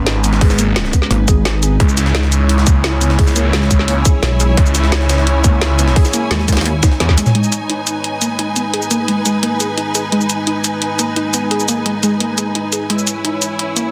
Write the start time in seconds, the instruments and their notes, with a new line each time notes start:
Already playing: detuned saw bass G#1, analog synth pad G#3 C#4 B4, string section D#4 B4 G#5
0.07 synth pluck D#4, snare, closed hi-hat
0.24 synth pluck B3, closed hi-hat, shaker
0.33 snare
0.41 detuned saw bass G#1, synth pluck G#4, kick, closed hi-hat, open hi-hat
0.50 snare, shaker
0.59 synth pluck A#3, closed hi-hat, shaker
0.76 synth pluck G#3, snare, closed hi-hat
0.85 snare
0.93 synth pluck B3, kick, closed hi-hat, shaker
1.02 snare
1.11 wobble bass G#1, synth pluck A#3, closed hi-hat
1.28 synth pluck G#4, kick, closed hi-hat, shaker
1.45 synth pluck G#4, snare, closed hi-hat
1.63 synth pluck G#4, closed hi-hat, shaker
1.80 detuned saw bass C#2, synth pluck G#3, string section E4, analog synth pad E4 C#5, kick, closed hi-hat
1.89 shaker
1.97 snare, closed hi-hat, shaker
2.06 snare
2.15 synth pluck D#4, snare, closed hi-hat
2.23 string section C#5 G#5, snare
2.32 closed hi-hat, shaker
2.49 closed hi-hat
2.58 snare
2.67 detuned saw bass C#2, synth pluck A#3, kick, closed hi-hat, shaker
2.84 synth pluck E4, snare, closed hi-hat
3.01 synth pluck B3, closed hi-hat, shaker
3.10 snare
3.19 synth pluck G#4, kick, closed hi-hat, open hi-hat
3.27 snare, shaker
3.36 synth pluck A#3, closed hi-hat, shaker
3.53 synth pluck G#3, snare, closed hi-hat
3.62 snare
3.71 synth pluck G#3, kick, closed hi-hat, shaker
3.79 snare
3.88 synth pluck A#3, closed hi-hat
4.05 synth pluck G#4, kick, closed hi-hat, shaker
4.23 wobble bass B1, synth pluck E4, snare, closed hi-hat
4.40 synth pluck G#4, closed hi-hat, shaker
4.57 detuned saw bass C#2, synth pluck G#3, kick, closed hi-hat
4.66 shaker
4.75 snare, closed hi-hat, shaker
4.84 snare
4.92 synth pluck D#4, snare, closed hi-hat
5.01 snare
5.09 snare, closed hi-hat, shaker
5.18 snare
5.27 closed hi-hat
5.44 detuned saw bass C#2, synth pluck A#3, kick, closed hi-hat, shaker
5.61 detuned saw bass C#2, synth pluck E4, snare, closed hi-hat
5.79 synth pluck B3, closed hi-hat, shaker
5.88 snare
5.96 synth pluck G#4, kick, closed hi-hat, open hi-hat
6.05 snare, shaker
6.13 synth pluck A#3, closed hi-hat, shaker
6.31 wobble bass D#2, synth pluck G#3, snare, closed hi-hat
6.39 snare
6.48 synth pluck G#3, kick, closed hi-hat, shaker
6.52 snare, closed hi-hat
6.57 snare, closed hi-hat
6.61 snare, closed hi-hat
6.66 synth pluck A#3, closed hi-hat
6.83 synth pluck D#4, kick, snare, closed hi-hat, shaker
6.92 snare
7.00 detuned saw bass E2, synth pluck B3, snare, closed hi-hat
7.09 kick, snare
7.17 synth pluck G#3, closed hi-hat, shaker
7.26 snare, mid tom, shaker
7.35 synth pluck G#3, analog synth pad G#3 D#4 B4, string section D#4, closed hi-hat
7.44 shaker
7.52 closed hi-hat, shaker
7.63 string section B4
7.70 synth pluck D#4, closed hi-hat
7.87 closed hi-hat, shaker
8.04 closed hi-hat
8.22 synth pluck A#3, closed hi-hat, shaker
8.39 synth pluck D#4, closed hi-hat
8.56 synth pluck B3, closed hi-hat, shaker
8.74 synth pluck G#4, closed hi-hat
8.82 shaker
8.91 synth pluck A#3, closed hi-hat, shaker
9.08 synth pluck G#3, closed hi-hat
9.26 synth pluck G#3, closed hi-hat, shaker
9.43 synth pluck A#3, closed hi-hat
9.60 synth pluck G#4, closed hi-hat, shaker
9.78 synth pluck D#4, closed hi-hat
9.95 synth pluck G#4, closed hi-hat, shaker
10.12 synth pluck G#3, closed hi-hat
10.21 shaker
10.30 closed hi-hat, shaker
10.47 synth pluck D#4, closed hi-hat
10.64 closed hi-hat, shaker
10.82 closed hi-hat
10.99 synth pluck A#3, closed hi-hat, shaker
11.16 synth pluck D#4, closed hi-hat
11.34 synth pluck B3, closed hi-hat, shaker
11.51 synth pluck G#4, closed hi-hat
11.60 shaker
11.68 synth pluck A#3, closed hi-hat, shaker
11.86 synth pluck G#3, closed hi-hat
12.03 synth pluck G#3, closed hi-hat, shaker
12.20 synth pluck A#3, closed hi-hat
12.38 synth pluck G#4, closed hi-hat, shaker
12.55 synth pluck D#4, closed hi-hat
12.72 synth pluck G#4, closed hi-hat, shaker
12.90 synth pluck G#3, analog synth pad E4 C#5, string section E4, closed hi-hat
12.99 string section C#5, shaker
13.07 closed hi-hat, shaker
13.24 synth pluck D#4, closed hi-hat
13.42 closed hi-hat, shaker
13.59 closed hi-hat
13.76 synth pluck A#3, closed hi-hat, shaker